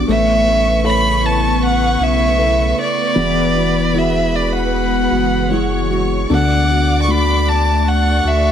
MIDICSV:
0, 0, Header, 1, 7, 480
1, 0, Start_track
1, 0, Key_signature, 2, "major"
1, 0, Tempo, 777202
1, 49, Time_signature, 4, 2, 24, 8
1, 5261, End_track
2, 0, Start_track
2, 0, Title_t, "Violin section"
2, 0, Program_c, 0, 48
2, 50, Note_on_c, 0, 71, 99
2, 50, Note_on_c, 0, 85, 105
2, 1932, Note_off_c, 0, 71, 0
2, 1932, Note_off_c, 0, 85, 0
2, 1955, Note_on_c, 0, 71, 94
2, 1955, Note_on_c, 0, 83, 97
2, 3380, Note_off_c, 0, 71, 0
2, 3380, Note_off_c, 0, 83, 0
2, 3412, Note_on_c, 0, 85, 80
2, 3413, Note_on_c, 0, 73, 72
2, 3886, Note_off_c, 0, 85, 0
2, 3887, Note_off_c, 0, 73, 0
2, 3892, Note_on_c, 0, 74, 80
2, 3893, Note_on_c, 0, 86, 96
2, 4835, Note_off_c, 0, 74, 0
2, 4836, Note_off_c, 0, 86, 0
2, 4850, Note_on_c, 0, 74, 84
2, 4851, Note_on_c, 0, 85, 95
2, 5261, Note_off_c, 0, 74, 0
2, 5261, Note_off_c, 0, 85, 0
2, 5261, End_track
3, 0, Start_track
3, 0, Title_t, "Violin"
3, 0, Program_c, 1, 40
3, 67, Note_on_c, 1, 76, 114
3, 509, Note_off_c, 1, 76, 0
3, 538, Note_on_c, 1, 83, 114
3, 777, Note_on_c, 1, 81, 99
3, 786, Note_off_c, 1, 83, 0
3, 1008, Note_off_c, 1, 81, 0
3, 1018, Note_on_c, 1, 78, 96
3, 1255, Note_on_c, 1, 76, 102
3, 1264, Note_off_c, 1, 78, 0
3, 1725, Note_off_c, 1, 76, 0
3, 1736, Note_on_c, 1, 74, 100
3, 2457, Note_on_c, 1, 76, 89
3, 2467, Note_off_c, 1, 74, 0
3, 2691, Note_on_c, 1, 74, 79
3, 2700, Note_off_c, 1, 76, 0
3, 2805, Note_off_c, 1, 74, 0
3, 2812, Note_on_c, 1, 78, 81
3, 3632, Note_off_c, 1, 78, 0
3, 3917, Note_on_c, 1, 78, 108
3, 4320, Note_off_c, 1, 78, 0
3, 4337, Note_on_c, 1, 85, 76
3, 4389, Note_on_c, 1, 83, 103
3, 4398, Note_off_c, 1, 85, 0
3, 4624, Note_on_c, 1, 81, 97
3, 4633, Note_off_c, 1, 83, 0
3, 4868, Note_on_c, 1, 78, 99
3, 4877, Note_off_c, 1, 81, 0
3, 5111, Note_on_c, 1, 76, 105
3, 5120, Note_off_c, 1, 78, 0
3, 5261, Note_off_c, 1, 76, 0
3, 5261, End_track
4, 0, Start_track
4, 0, Title_t, "Felt piano"
4, 0, Program_c, 2, 0
4, 0, Control_c, 2, 64, 127
4, 0, Note_on_c, 2, 66, 53
4, 47, Note_on_c, 2, 57, 78
4, 59, Control_c, 2, 64, 0
4, 62, Note_off_c, 2, 66, 0
4, 150, Control_c, 2, 64, 127
4, 517, Note_on_c, 2, 69, 51
4, 519, Note_on_c, 2, 71, 44
4, 521, Note_on_c, 2, 73, 57
4, 982, Note_off_c, 2, 69, 0
4, 984, Note_off_c, 2, 71, 0
4, 985, Note_off_c, 2, 73, 0
4, 1470, Note_on_c, 2, 69, 50
4, 1473, Note_on_c, 2, 76, 57
4, 1474, Note_on_c, 2, 71, 43
4, 1931, Note_off_c, 2, 57, 0
4, 1938, Note_off_c, 2, 69, 0
4, 1940, Note_off_c, 2, 71, 0
4, 1940, Note_off_c, 2, 76, 0
4, 1948, Note_on_c, 2, 52, 71
4, 1964, Control_c, 2, 64, 0
4, 2067, Control_c, 2, 64, 127
4, 2430, Note_on_c, 2, 64, 44
4, 2433, Note_on_c, 2, 66, 41
4, 2435, Note_on_c, 2, 68, 52
4, 2901, Note_off_c, 2, 64, 0
4, 2903, Note_off_c, 2, 66, 0
4, 2903, Note_off_c, 2, 68, 0
4, 3400, Note_on_c, 2, 64, 49
4, 3402, Note_on_c, 2, 66, 42
4, 3405, Note_on_c, 2, 68, 51
4, 3864, Note_off_c, 2, 52, 0
4, 3875, Note_off_c, 2, 64, 0
4, 3876, Note_off_c, 2, 66, 0
4, 3878, Note_off_c, 2, 68, 0
4, 3890, Note_on_c, 2, 50, 69
4, 3900, Control_c, 2, 64, 0
4, 3996, Control_c, 2, 64, 127
4, 4368, Note_on_c, 2, 57, 45
4, 4372, Note_on_c, 2, 66, 49
4, 4373, Note_on_c, 2, 62, 41
4, 4836, Note_off_c, 2, 57, 0
4, 4838, Note_off_c, 2, 66, 0
4, 4839, Note_off_c, 2, 62, 0
4, 5261, Note_off_c, 2, 50, 0
4, 5261, End_track
5, 0, Start_track
5, 0, Title_t, "Nylon-string guitar"
5, 0, Program_c, 3, 24
5, 53, Note_on_c, 3, 57, 77
5, 57, Note_on_c, 3, 61, 93
5, 61, Note_on_c, 3, 64, 87
5, 64, Note_on_c, 3, 71, 96
5, 280, Note_off_c, 3, 71, 0
5, 288, Note_off_c, 3, 64, 0
5, 288, Note_on_c, 3, 71, 59
5, 289, Note_off_c, 3, 57, 0
5, 291, Note_off_c, 3, 61, 0
5, 295, Note_on_c, 3, 64, 59
5, 304, Note_on_c, 3, 61, 54
5, 517, Note_on_c, 3, 57, 54
5, 520, Note_off_c, 3, 61, 0
5, 523, Note_off_c, 3, 64, 0
5, 525, Note_off_c, 3, 71, 0
5, 527, Note_on_c, 3, 61, 68
5, 530, Note_on_c, 3, 64, 62
5, 538, Note_on_c, 3, 71, 72
5, 1230, Note_off_c, 3, 71, 0
5, 1232, Note_on_c, 3, 71, 57
5, 1236, Note_off_c, 3, 57, 0
5, 1238, Note_off_c, 3, 64, 0
5, 1240, Note_on_c, 3, 64, 53
5, 1241, Note_off_c, 3, 61, 0
5, 1251, Note_on_c, 3, 61, 42
5, 1472, Note_off_c, 3, 61, 0
5, 1473, Note_on_c, 3, 57, 59
5, 1474, Note_off_c, 3, 71, 0
5, 1479, Note_off_c, 3, 64, 0
5, 1480, Note_on_c, 3, 61, 59
5, 1485, Note_on_c, 3, 64, 63
5, 1490, Note_on_c, 3, 71, 71
5, 1703, Note_off_c, 3, 71, 0
5, 1711, Note_on_c, 3, 71, 49
5, 1714, Note_off_c, 3, 64, 0
5, 1715, Note_off_c, 3, 57, 0
5, 1718, Note_off_c, 3, 61, 0
5, 1722, Note_on_c, 3, 64, 43
5, 1946, Note_on_c, 3, 52, 80
5, 1949, Note_off_c, 3, 64, 0
5, 1951, Note_on_c, 3, 56, 79
5, 1952, Note_on_c, 3, 59, 80
5, 1953, Note_off_c, 3, 71, 0
5, 1957, Note_on_c, 3, 64, 84
5, 1961, Note_on_c, 3, 66, 96
5, 2182, Note_off_c, 3, 66, 0
5, 2190, Note_on_c, 3, 66, 60
5, 2191, Note_off_c, 3, 52, 0
5, 2192, Note_off_c, 3, 64, 0
5, 2194, Note_off_c, 3, 56, 0
5, 2194, Note_off_c, 3, 59, 0
5, 2200, Note_on_c, 3, 64, 49
5, 2207, Note_on_c, 3, 59, 52
5, 2427, Note_on_c, 3, 56, 59
5, 2428, Note_off_c, 3, 59, 0
5, 2433, Note_off_c, 3, 66, 0
5, 2434, Note_off_c, 3, 64, 0
5, 2436, Note_on_c, 3, 59, 53
5, 2442, Note_on_c, 3, 64, 62
5, 2445, Note_on_c, 3, 66, 64
5, 3154, Note_off_c, 3, 66, 0
5, 3157, Note_off_c, 3, 64, 0
5, 3157, Note_on_c, 3, 66, 57
5, 3158, Note_off_c, 3, 56, 0
5, 3162, Note_off_c, 3, 59, 0
5, 3164, Note_on_c, 3, 64, 43
5, 3173, Note_on_c, 3, 59, 47
5, 3398, Note_on_c, 3, 56, 62
5, 3399, Note_off_c, 3, 59, 0
5, 3403, Note_off_c, 3, 66, 0
5, 3404, Note_off_c, 3, 64, 0
5, 3407, Note_on_c, 3, 59, 69
5, 3412, Note_on_c, 3, 64, 65
5, 3419, Note_on_c, 3, 66, 72
5, 3640, Note_off_c, 3, 66, 0
5, 3646, Note_off_c, 3, 56, 0
5, 3647, Note_on_c, 3, 66, 55
5, 3650, Note_off_c, 3, 59, 0
5, 3652, Note_off_c, 3, 64, 0
5, 3659, Note_on_c, 3, 64, 47
5, 3668, Note_on_c, 3, 59, 41
5, 3891, Note_off_c, 3, 66, 0
5, 3891, Note_on_c, 3, 50, 74
5, 3895, Note_on_c, 3, 57, 78
5, 3897, Note_off_c, 3, 64, 0
5, 3901, Note_on_c, 3, 66, 77
5, 3902, Note_off_c, 3, 59, 0
5, 3903, Note_on_c, 3, 69, 82
5, 4125, Note_off_c, 3, 69, 0
5, 4132, Note_on_c, 3, 69, 51
5, 4134, Note_off_c, 3, 50, 0
5, 4135, Note_off_c, 3, 66, 0
5, 4136, Note_off_c, 3, 57, 0
5, 4142, Note_on_c, 3, 66, 53
5, 4372, Note_on_c, 3, 57, 54
5, 4374, Note_off_c, 3, 69, 0
5, 4375, Note_off_c, 3, 66, 0
5, 4383, Note_on_c, 3, 66, 59
5, 4388, Note_on_c, 3, 69, 58
5, 5078, Note_off_c, 3, 69, 0
5, 5086, Note_on_c, 3, 69, 52
5, 5091, Note_off_c, 3, 57, 0
5, 5093, Note_off_c, 3, 66, 0
5, 5096, Note_on_c, 3, 66, 48
5, 5261, Note_off_c, 3, 66, 0
5, 5261, Note_off_c, 3, 69, 0
5, 5261, End_track
6, 0, Start_track
6, 0, Title_t, "Ambient pad"
6, 0, Program_c, 4, 92
6, 0, Note_on_c, 4, 59, 78
6, 45, Note_on_c, 4, 57, 80
6, 47, Note_on_c, 4, 64, 94
6, 50, Note_on_c, 4, 49, 85
6, 1935, Note_off_c, 4, 57, 0
6, 1936, Note_off_c, 4, 64, 0
6, 1938, Note_off_c, 4, 49, 0
6, 1948, Note_on_c, 4, 56, 74
6, 1951, Note_on_c, 4, 52, 83
6, 1951, Note_on_c, 4, 66, 92
6, 3869, Note_off_c, 4, 56, 0
6, 3869, Note_off_c, 4, 59, 0
6, 3870, Note_off_c, 4, 52, 0
6, 3870, Note_off_c, 4, 66, 0
6, 3889, Note_on_c, 4, 62, 80
6, 3892, Note_on_c, 4, 50, 80
6, 3894, Note_on_c, 4, 57, 71
6, 3895, Note_on_c, 4, 78, 89
6, 5261, Note_off_c, 4, 50, 0
6, 5261, Note_off_c, 4, 57, 0
6, 5261, Note_off_c, 4, 62, 0
6, 5261, Note_off_c, 4, 78, 0
6, 5261, End_track
7, 0, Start_track
7, 0, Title_t, "Sub bass"
7, 0, Program_c, 5, 38
7, 51, Note_on_c, 5, 33, 108
7, 1216, Note_off_c, 5, 33, 0
7, 1235, Note_on_c, 5, 35, 90
7, 1690, Note_off_c, 5, 35, 0
7, 1954, Note_on_c, 5, 28, 101
7, 3136, Note_off_c, 5, 28, 0
7, 3159, Note_on_c, 5, 30, 84
7, 3866, Note_off_c, 5, 30, 0
7, 3891, Note_on_c, 5, 38, 96
7, 5067, Note_off_c, 5, 38, 0
7, 5091, Note_on_c, 5, 38, 86
7, 5261, Note_off_c, 5, 38, 0
7, 5261, End_track
0, 0, End_of_file